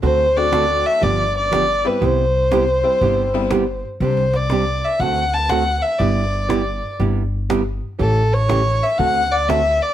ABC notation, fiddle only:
X:1
M:4/4
L:1/8
Q:"Swing" 1/4=121
K:C
V:1 name="Fiddle"
c d2 e d d2 B | c6- c z | c d2 e ^f a f e | d4 z4 |
A ^c2 e ^f d e d |]